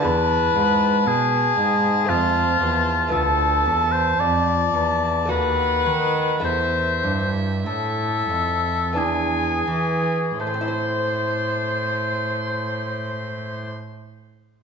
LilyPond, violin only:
\new Staff \with { instrumentName = "Violin" } { \time 3/4 \key a \minor \tempo 4 = 51 a''2 a''4 | a''2 fis''4 | e''4 e''4 gis''4 | c'''2. | }